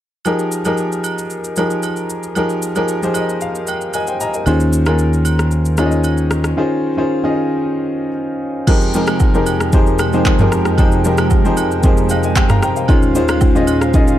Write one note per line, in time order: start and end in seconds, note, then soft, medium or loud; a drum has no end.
0.25 0.57 F3 medium
0.25 0.57 D#4 medium
0.25 0.58 G4 medium
0.25 0.58 G#4 medium
0.25 0.58 A#4 medium
0.25 high agogo medium
0.25 shaker medium
0.39 shaker soft
0.52 shaker loud
0.65 1.39 F3 medium
0.65 1.39 D#4 medium
0.65 1.39 G4 medium
0.65 1.39 G#4 medium
0.65 1.40 A#4 medium
0.65 high agogo medium
0.65 shaker medium
0.77 shaker medium
0.92 shaker soft
1.04 high agogo medium
1.04 shaker medium
1.18 shaker medium
1.30 shaker medium
1.44 shaker medium
1.56 2.21 F3 medium
1.56 2.21 D#4 medium
1.56 2.21 G4 medium
1.56 2.21 G#4 medium
1.56 2.21 A#4 medium
1.56 high agogo medium
1.56 shaker medium
1.70 shaker soft
1.83 high agogo medium
1.83 shaker medium
1.96 shaker medium
2.10 shaker medium
2.23 shaker medium
2.35 2.68 F3 medium
2.35 2.68 D#4 medium
2.35 2.68 G4 medium
2.35 2.68 G#4 medium
2.35 2.68 A#4 medium
2.35 high agogo medium
2.35 shaker medium
2.49 shaker medium
2.62 shaker loud
2.75 2.97 F3 medium
2.75 2.97 D#4 medium
2.75 2.97 G4 medium
2.75 2.97 G#4 medium
2.75 2.97 A#4 medium
2.75 high agogo medium
2.75 shaker medium
2.88 shaker medium
3.02 3.86 F3 medium
3.02 3.87 D#4 medium
3.02 3.87 G4 medium
3.02 3.87 G#4 medium
3.02 3.87 C5 medium
3.02 shaker soft
3.14 3.40 D#5 medium
3.14 high agogo medium
3.14 shaker medium
3.29 shaker medium
3.41 3.66 F5 medium
3.41 shaker medium
3.55 shaker medium
3.67 3.92 G5 medium
3.67 high agogo medium
3.67 shaker medium
3.81 shaker medium
3.94 4.08 A#4 medium
3.94 4.07 D#5 medium
3.94 4.19 G#5 medium
3.94 high agogo medium
3.94 shaker medium
4.07 4.20 C5 medium
4.07 4.20 G5 medium
4.07 shaker medium
4.20 4.33 D#5 medium
4.20 4.34 G#5 medium
4.20 4.45 A#5 medium
4.20 shaker medium
4.34 4.60 A#4 medium
4.34 4.59 D#5 medium
4.34 shaker medium
4.46 6.53 D#2 medium
4.46 4.78 D#3 medium
4.46 4.78 C#4 medium
4.46 4.79 F4 medium
4.46 4.79 G#4 medium
4.46 4.79 C5 medium
4.46 high agogo medium
4.46 shaker medium
4.60 shaker medium
4.73 shaker medium
4.86 5.60 D#3 medium
4.86 5.60 C#4 medium
4.86 5.60 F4 medium
4.86 5.60 G#4 medium
4.86 5.61 A#4 medium
4.86 cross-stick medium
4.86 high agogo medium
4.86 shaker medium
4.99 shaker medium
5.13 shaker soft
5.25 high agogo medium
5.25 shaker medium
5.39 cross-stick medium
5.39 shaker medium
5.51 shaker medium
5.65 shaker medium
5.77 6.42 D#3 medium
5.77 6.42 C#4 medium
5.77 6.42 F4 medium
5.77 6.42 G#4 medium
5.77 5.85 C#5 medium
5.77 cross-stick medium
5.77 high agogo medium
5.77 shaker medium
5.86 6.45 D#5 medium
5.91 shaker medium
6.04 high agogo medium
6.04 shaker medium
6.17 shaker medium
6.31 cross-stick medium
6.31 shaker medium
6.44 cross-stick medium
6.44 shaker medium
6.57 6.89 D#3 medium
6.57 6.89 C#4 medium
6.57 6.89 F4 medium
6.57 6.89 G#4 medium
6.57 6.89 C5 medium
6.97 7.18 D#3 medium
6.97 7.18 C#4 medium
6.97 7.18 F4 medium
6.97 7.18 G#4 medium
6.97 7.19 C5 medium
7.23 8.07 D#3 medium
7.23 8.08 C#4 medium
7.23 8.08 F4 medium
7.23 8.08 G#4 medium
7.23 8.08 D#5 medium
8.67 12.85 F2 medium
8.67 12.85 C3 medium
8.67 8.89 F3 medium
8.67 12.85 G#3 medium
8.67 8.89 C4 medium
8.67 12.85 D#4 medium
8.67 8.89 D#4 medium
8.67 8.89 G4 medium
8.67 8.89 G#4 medium
8.67 12.85 A#4 medium
8.67 8.90 A#4 medium
8.67 12.84 G5 medium
8.67 kick loud
8.67 crash medium
8.67 high agogo medium
8.67 shaker medium
8.81 shaker medium
8.94 9.26 F3 medium
8.94 9.26 C4 medium
8.94 9.26 D#4 medium
8.94 9.26 G4 medium
8.94 9.26 G#4 medium
8.94 9.26 A#4 medium
8.94 shaker loud
9.07 cross-stick loud
9.07 high agogo medium
9.07 shaker medium
9.20 kick medium
9.20 low woodblock medium
9.20 shaker medium
9.34 9.65 F3 medium
9.34 9.65 C4 medium
9.34 9.66 D#4 medium
9.34 9.66 G4 medium
9.34 9.66 G#4 medium
9.34 9.66 A#4 medium
9.34 shaker soft
9.46 high agogo medium
9.46 shaker medium
9.60 cross-stick medium
9.60 shaker medium
9.73 10.05 F3 medium
9.73 10.05 C4 medium
9.73 10.05 D#4 medium
9.73 10.05 G4 medium
9.73 10.05 G#4 medium
9.73 10.05 C5 medium
9.73 kick loud
9.73 shaker medium
9.87 shaker medium
9.99 cross-stick medium
9.99 high agogo medium
9.99 shaker medium
10.13 10.34 F3 medium
10.13 10.34 C4 medium
10.13 10.34 D#4 medium
10.13 10.34 G4 medium
10.13 10.34 G#4 medium
10.13 10.34 C5 medium
10.13 shaker soft
10.25 kick medium
10.25 clap medium
10.25 high agogo medium
10.25 low woodblock medium
10.25 shaker medium
10.39 10.71 F3 medium
10.39 10.71 C4 medium
10.39 10.71 D#4 medium
10.39 10.71 G4 medium
10.39 10.71 G#4 medium
10.39 10.71 A#4 loud
10.39 mid tom medium
10.39 shaker medium
10.52 cross-stick medium
10.52 shaker medium
10.65 cross-stick medium
10.65 shaker medium
10.78 10.99 F3 medium
10.78 11.00 C4 medium
10.78 11.00 D#4 medium
10.78 11.00 G4 medium
10.78 11.00 G#4 medium
10.78 11.00 C5 medium
10.78 kick loud
10.78 high agogo medium
10.78 shaker medium
10.92 shaker medium
11.04 11.36 F3 medium
11.04 11.37 C4 medium
11.04 11.37 D#4 medium
11.04 11.37 G4 medium
11.04 11.37 G#4 medium
11.04 11.37 A#4 medium
11.04 shaker loud
11.18 cross-stick loud
11.18 high agogo medium
11.18 shaker medium
11.30 kick medium
11.30 low woodblock medium
11.30 shaker medium
11.45 11.76 F3 medium
11.45 11.76 C4 medium
11.45 11.76 D#4 medium
11.45 11.76 G4 medium
11.45 11.76 G#4 medium
11.45 11.76 C5 medium
11.45 shaker soft
11.57 high agogo medium
11.57 shaker loud
11.71 shaker medium
11.83 12.15 F3 medium
11.83 12.15 C4 medium
11.83 12.15 D#4 medium
11.83 12.16 G4 medium
11.83 12.16 G#4 medium
11.83 12.10 C5 medium
11.83 kick loud
11.83 shaker medium
11.97 shaker medium
12.09 12.23 C5 soft
12.09 12.24 D#5 medium
12.09 12.23 F5 medium
12.09 high agogo medium
12.09 shaker medium
12.23 12.49 D#5 medium
12.23 12.49 G#5 medium
12.23 shaker medium
12.36 12.61 G5 medium
12.36 kick medium
12.36 clap medium
12.36 high agogo medium
12.36 low woodblock medium
12.36 shaker medium
12.49 12.63 F5 medium
12.49 12.62 A#5 medium
12.49 cross-stick medium
12.49 mid tom medium
12.49 shaker medium
12.63 12.76 C5 medium
12.63 12.76 G5 medium
12.63 12.87 A#5 medium
12.63 cross-stick medium
12.63 shaker medium
12.76 12.88 C5 medium
12.76 13.01 F5 medium
12.76 shaker medium
12.88 14.19 D#2 medium
12.88 14.19 A#2 medium
12.88 13.10 D#3 medium
12.88 14.19 G#3 medium
12.88 14.19 C#4 medium
12.88 13.10 C#4 medium
12.88 13.10 F4 medium
12.88 13.10 G#4 medium
12.88 14.19 C5 medium
12.88 13.10 C5 medium
12.88 14.19 F5 medium
12.88 kick loud
12.88 high agogo medium
12.88 shaker medium
13.02 shaker medium
13.15 13.47 D#3 medium
13.15 13.47 C#4 medium
13.15 13.47 F4 medium
13.15 13.47 G#4 medium
13.15 13.47 C5 loud
13.15 shaker loud
13.28 cross-stick loud
13.28 high agogo medium
13.28 shaker medium
13.41 kick medium
13.41 low woodblock medium
13.41 shaker medium
13.55 13.86 D#3 medium
13.55 13.86 C#4 medium
13.55 13.87 F4 medium
13.55 13.87 G#4 medium
13.55 13.87 D#5 medium
13.55 shaker soft
13.67 high agogo medium
13.67 shaker medium
13.81 cross-stick medium
13.81 shaker medium
13.93 14.19 D#3 medium
13.93 14.19 C#4 medium
13.93 14.19 F4 medium
13.93 14.19 G#4 medium
13.93 14.19 D#5 medium
13.93 kick loud
13.93 shaker medium
14.08 shaker medium